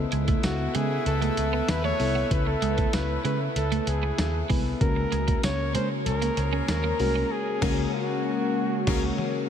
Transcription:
Already playing: fm electric piano C#3 B3 E4 A4, horn section A3 E4 B4 E5
0.12 picked electric bass C#2, clean electric guitar G#3, closed hi-hat
0.28 clean electric guitar A3, kick, closed hi-hat
0.43 picked electric bass C#2, flugelhorn F#4, snare, closed hi-hat, tambourine
0.75 picked electric bass C#3, clean electric guitar G#3, flugelhorn G#4, closed hi-hat
1.06 picked electric bass C#2, flugelhorn A4, closed hi-hat
1.22 clean electric guitar A3, flugelhorn A4, closed hi-hat
1.37 picked electric bass C#2, muted clean electric guitar stroke, closed hi-hat
1.53 clean electric guitar B3
1.68 picked electric bass D#2, flugelhorn B4, snare, closed hi-hat, tambourine
1.84 clean electric guitar A3, flugelhorn C#5
1.99 picked electric bass C2, fm electric piano B3 E4 A4, muted clean electric guitar stroke, open hi-hat
2.15 clean electric guitar B3
2.30 picked electric bass C#2, fm electric piano C#3 B3 E4 B4, flugelhorn B4, kick, closed hi-hat
2.47 flugelhorn A4, muted clean electric guitar stroke
2.62 picked electric bass C#2, clean electric guitar G#3, closed hi-hat
2.78 clean electric guitar A3, kick, closed hi-hat
2.93 picked electric bass C#2, flugelhorn B4, snare, closed hi-hat, tambourine
3.25 picked electric bass C#3, clean electric guitar G#3, flugelhorn B4, closed hi-hat
3.56 picked electric bass C#2, flugelhorn A4, closed hi-hat
3.72 clean electric guitar A3, closed hi-hat
3.87 picked electric bass C#2, flugelhorn G#4, muted clean electric guitar stroke, closed hi-hat
4.03 clean electric guitar B3
4.18 picked electric bass D#2, snare, closed hi-hat, tambourine
4.49 picked electric bass C2, clean electric guitar G#3, fm electric piano B3 E4 B4, kick, open hi-hat
4.81 picked electric bass C#2, fm electric piano C#3 G#3 A#3 C#4 F#4 A#4, flugelhorn A#4, kick, closed hi-hat
4.96 muted clean electric guitar stroke
5.12 picked electric bass C#2, clean electric guitar G#3, closed hi-hat
5.28 clean electric guitar A#3, kick, closed hi-hat
5.43 picked electric bass C#2, flugelhorn C#5, snare, closed hi-hat, tambourine
5.74 picked electric bass C#3, clean electric guitar G#3, flugelhorn C5, closed hi-hat
6.06 picked electric bass C#2, horn section C#4 G#4 A#4 C#5, flugelhorn A#4, closed hi-hat
6.22 clean electric guitar A#3, closed hi-hat
6.37 picked electric bass C#2, muted clean electric guitar stroke, closed hi-hat
6.53 clean electric guitar C#4
6.68 picked electric bass D#2, flugelhorn A#4, snare, closed hi-hat, tambourine
6.84 clean electric guitar A#3
6.99 picked electric bass C2, fm electric piano G#3 A#3 C#4 F#4 A#4, muted clean electric guitar stroke, open hi-hat
7.16 clean electric guitar C#4
7.32 flugelhorn G#4
7.61 picked electric bass C#2, fm electric piano C#3 G#3 A#3 C#4 F#4 A#4, horn section C#4 G#4 A#4 C#5, kick, snare, crash
7.95 flugelhorn F#4
8.86 picked electric bass C#2, fm electric piano G#3 A#3 C#4 F#4 C#5, horn section C#4 G#4 A#4 C#5, kick, snare, crash
9.18 high tom

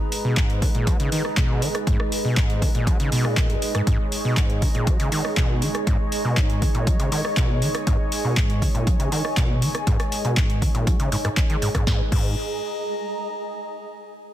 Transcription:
Already playing: analog synth pad G#3 D#4 B4, ambient pad G#4 D#5 A#5
0.12 open hi-hat
0.25 acid bass B2
0.37 acid bass G#2, kick, clap, closed hi-hat
0.50 closed hi-hat
0.62 acid bass D#3, kick, open hi-hat
0.75 acid bass A#2, closed hi-hat
0.87 acid bass F#3, kick, closed hi-hat
1.00 acid bass C#3, closed hi-hat
1.12 acid bass D#3, open hi-hat
1.25 cross-stick
1.37 acid bass B2, kick, clap, closed hi-hat
1.62 acid bass D#3, open hi-hat
1.75 cross-stick, closed hi-hat
1.87 acid bass G#2, kick, closed hi-hat
2.00 cross-stick
2.12 open hi-hat
2.25 acid bass B2
2.37 acid bass G#2, kick, clap, closed hi-hat
2.50 closed hi-hat
2.62 acid bass D#3, kick, open hi-hat
2.75 acid bass A#2, closed hi-hat
2.87 acid bass F#3, kick, closed hi-hat
3.00 acid bass C#3, closed hi-hat
3.12 acid bass B2, open hi-hat
3.25 acid bass A#2, cross-stick
3.37 ambient pad G#5, kick, clap, closed hi-hat
3.50 acid bass F#2, closed hi-hat
3.62 open hi-hat
3.75 acid bass G#2, cross-stick, closed hi-hat
3.87 acid bass G#2, analog synth pad C#5, kick, closed hi-hat
4.12 open hi-hat
4.25 acid bass B2
4.37 acid bass G#2, kick, clap, closed hi-hat
4.50 closed hi-hat
4.62 acid bass D#3, kick, open hi-hat
4.75 acid bass A#2, closed hi-hat
4.87 acid bass F#3, kick, closed hi-hat
5.00 acid bass C#3, closed hi-hat
5.12 acid bass D#3, open hi-hat
5.25 cross-stick
5.37 acid bass B2, kick, clap, closed hi-hat
5.62 acid bass D#3, open hi-hat
5.75 cross-stick, closed hi-hat
5.87 acid bass G#2, kick, closed hi-hat
6.12 open hi-hat
6.25 acid bass B2
6.37 acid bass G#2, kick, clap, closed hi-hat
6.50 closed hi-hat
6.62 acid bass D#3, kick, open hi-hat
6.75 acid bass A#2, closed hi-hat
6.87 acid bass F#3, kick, closed hi-hat
7.00 acid bass C#3, closed hi-hat
7.12 acid bass D#3, open hi-hat
7.25 cross-stick
7.37 acid bass B2, kick, clap, closed hi-hat
7.62 acid bass D#3, open hi-hat
7.75 cross-stick, closed hi-hat
7.87 acid bass G#2, kick, closed hi-hat
8.12 open hi-hat
8.25 acid bass B2
8.37 acid bass G#2, kick, clap, closed hi-hat
8.50 closed hi-hat
8.62 acid bass D#3, kick, open hi-hat
8.75 acid bass A#2, closed hi-hat
8.87 acid bass F#3, kick, closed hi-hat
9.00 acid bass C#3, closed hi-hat
9.12 acid bass D#3, open hi-hat
9.25 cross-stick
9.37 acid bass B2, kick, clap, closed hi-hat
9.62 acid bass D#3, open hi-hat
9.75 cross-stick, closed hi-hat
9.87 acid bass G#2, kick, closed hi-hat
10.00 cross-stick, closed hi-hat
10.12 open hi-hat
10.25 acid bass B2, closed hi-hat
10.37 acid bass G#2, kick, clap, closed hi-hat
10.50 closed hi-hat
10.62 acid bass D#3, kick, open hi-hat
10.75 acid bass A#2, closed hi-hat
10.87 acid bass F#3, kick, closed hi-hat
11.00 acid bass C#3, closed hi-hat
11.12 acid bass G#2, open hi-hat
11.25 acid bass G#2, cross-stick, closed hi-hat
11.37 kick, clap, closed hi-hat
11.50 acid bass D#3, closed hi-hat
11.62 acid bass G#2, open hi-hat
11.75 acid bass G#2, kick, cross-stick, closed hi-hat
11.87 acid bass G#2, analog synth pad G#3 D#4 B4, ambient pad G#4, kick, snare
11.95 ambient pad D#5
12.02 ambient pad A#5
12.12 acid bass G#2, kick, crash

